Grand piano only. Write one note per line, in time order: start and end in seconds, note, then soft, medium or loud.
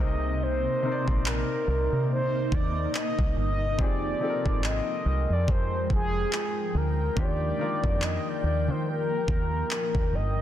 0.00 0.68 C3 medium
0.00 0.69 C4 medium
0.00 0.69 D#4 medium
0.00 0.70 A#4 medium
0.00 0.07 C5 medium
0.07 0.73 D#5 medium
0.82 2.00 C3 medium
0.82 2.01 C4 medium
0.82 2.01 D#4 medium
0.82 2.02 A#4 medium
0.82 0.92 C5 medium
0.92 2.05 D5 medium
3.78 4.09 F3 medium
3.78 4.10 C4 medium
3.78 4.10 D#4 medium
3.78 4.11 G4 medium
3.78 4.11 G#4 medium
4.20 5.38 F3 medium
4.20 5.39 C4 medium
4.20 5.39 D#4 medium
4.20 5.40 G4 medium
4.20 4.30 A4 medium
4.30 5.43 A#4 medium
7.16 7.47 D#3 medium
7.16 7.48 A#3 medium
7.16 7.48 D4 medium
7.16 7.49 F4 medium
7.16 7.49 G4 medium
7.58 8.76 D#3 medium
7.58 8.77 A#3 medium
7.58 8.77 D4 medium
7.58 8.78 F4 medium
7.58 8.78 A#4 medium